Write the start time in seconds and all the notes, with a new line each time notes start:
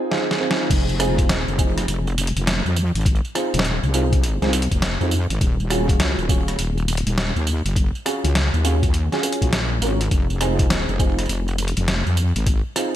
0.11 C4 D#4 F4 G#4, snare
0.31 snare
0.40 C4 D#4 F4 G#4
0.51 snare
0.70 F1, kick, closed hi-hat, crash, tambourine
0.89 tambourine
0.99 C4 D#4 F4 G#4, cross-stick, closed hi-hat, tambourine
1.18 kick, closed hi-hat, tambourine
1.29 D#1, snare, closed hi-hat, tambourine
1.48 F1, tambourine
1.58 C4 D#4 F4 G#4, kick, tambourine
1.78 cross-stick, closed hi-hat, tambourine
1.88 F1, closed hi-hat, tambourine
2.07 tambourine
2.18 closed hi-hat, tambourine
2.27 closed hi-hat
2.36 F1, closed hi-hat, tambourine
2.47 snare, closed hi-hat, tambourine
2.65 F2, tambourine
2.76 tambourine
2.95 G#1, closed hi-hat, tambourine
3.01 tambourine
3.06 kick, closed hi-hat, tambourine
3.15 tambourine
3.25 tambourine
3.35 C4 D#4 F4 G#4, cross-stick, closed hi-hat, tambourine
3.54 D#1, closed hi-hat, tambourine
3.59 snare
3.65 closed hi-hat, tambourine
3.83 C2, tambourine
3.94 C4 D#4 F4 G#4, tambourine
4.13 kick, closed hi-hat, tambourine
4.24 closed hi-hat, tambourine
4.42 C2 C4 D#4 F4 G#4, snare, tambourine
4.53 closed hi-hat, tambourine
4.62 closed hi-hat
4.71 F1, kick, closed hi-hat, tambourine
4.82 snare, closed hi-hat, tambourine
5.00 F2 C4 D#4 F4 G#4, tambourine
5.11 tambourine
5.30 G#1, closed hi-hat, tambourine
5.41 D#1, kick, closed hi-hat, tambourine
5.60 tambourine
5.70 C#4 F4 F#4 G#4, cross-stick, closed hi-hat, tambourine
5.89 kick, closed hi-hat, tambourine
6.00 C#2, snare, closed hi-hat, tambourine
6.18 D#1, tambourine
6.29 C#4 F4 F#4 G#4, kick, tambourine
6.48 cross-stick, closed hi-hat, tambourine
6.58 D#1, closed hi-hat, tambourine
6.78 tambourine
6.88 closed hi-hat, tambourine
6.97 closed hi-hat
7.06 D#1, closed hi-hat, tambourine
7.18 snare, tambourine
7.36 D#2, tambourine
7.47 tambourine
7.65 F#1, closed hi-hat, tambourine
7.76 kick, closed hi-hat, tambourine
7.95 tambourine
8.05 C#4 F4 F#4 G#4, cross-stick, closed hi-hat, tambourine
8.24 C#2, closed hi-hat, tambourine
8.35 snare, closed hi-hat, tambourine
8.53 D#2, tambourine
8.64 C#4 F4 F#4 G#4, closed hi-hat, tambourine
8.83 kick, closed hi-hat, tambourine
8.94 closed hi-hat, tambourine
9.12 C#4 F4 F#4 G#4, snare, tambourine
9.23 C#4 F4 F#4 G#4, closed hi-hat, tambourine
9.33 closed hi-hat
9.42 A#1 C#4 F4 F#4 G#4, kick, closed hi-hat, tambourine
9.53 snare, closed hi-hat, tambourine
9.82 G#1 C#4 F4 F#4 A#4, closed hi-hat, tambourine
10.01 closed hi-hat, tambourine
10.11 F1, kick, closed hi-hat, tambourine
10.30 tambourine
10.41 C4 D#4 F4 G#4, cross-stick, closed hi-hat, tambourine
10.59 kick, closed hi-hat, tambourine
10.70 D#1, snare, closed hi-hat, tambourine
10.89 F1, tambourine
10.99 C4 D#4 F4 G#4, kick, tambourine
11.19 cross-stick, closed hi-hat, tambourine
11.26 F1, closed hi-hat, tambourine
11.29 tambourine
11.48 tambourine
11.58 closed hi-hat, tambourine
11.68 closed hi-hat
11.77 F1, closed hi-hat, tambourine
11.88 snare, closed hi-hat, tambourine
12.06 F2, tambourine
12.17 tambourine
12.36 G#1, closed hi-hat, tambourine
12.47 kick, closed hi-hat, tambourine
12.76 C4 D#4 F4 G#4, cross-stick, closed hi-hat, tambourine